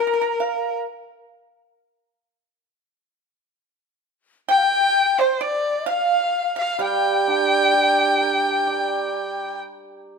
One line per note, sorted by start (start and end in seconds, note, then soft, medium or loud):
0.00 0.80 A#4 medium
0.00 0.86 A#4 medium
0.00 0.06 A#4 soft
0.07 0.12 A#4 soft
0.13 0.20 A#4 soft
0.21 0.28 A#4 soft
0.40 0.82 F5 medium
4.49 5.14 G5 medium
4.49 5.22 G5 loud
4.49 4.59 G5 medium
4.58 4.65 F5 medium
4.64 5.22 G5 medium
5.18 5.40 C5 medium
5.18 5.43 C5 medium
5.41 5.84 D5 medium
5.41 5.89 D5 medium
5.41 5.88 D5 medium
5.86 6.52 F5 medium
5.86 6.55 F5 medium
5.86 6.53 F5 medium
6.56 6.82 F5 medium
6.56 6.78 F5 medium
6.56 6.79 F5 medium
6.79 9.63 G3 medium
6.79 7.30 F5 medium
6.79 9.64 G5 medium
6.79 9.61 G5 medium
7.28 9.16 D4 soft
7.28 7.62 F#5 medium
7.62 9.59 G5 medium
7.74 9.64 G4 soft
8.21 10.12 A#4 soft
8.67 10.19 D5 soft